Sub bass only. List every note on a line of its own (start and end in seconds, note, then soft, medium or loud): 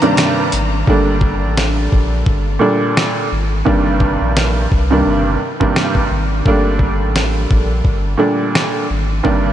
0.53 0.84 G#1 medium
0.88 1.44 G1 loud
1.42 1.88 A1 medium
1.93 2.24 A#1 medium
2.27 2.58 G1 loud
3.32 3.63 G#1 medium
3.67 4.17 G1 loud
4.21 4.67 A#1 medium
4.72 5.03 C2 medium
5.06 5.38 G1 medium
6.11 6.42 G#1 medium
6.46 7.02 G1 loud
7.00 7.46 A1 medium
7.51 7.82 A#1 medium
7.85 8.16 G1 loud
8.90 9.22 G#1 loud
9.25 9.53 G1 loud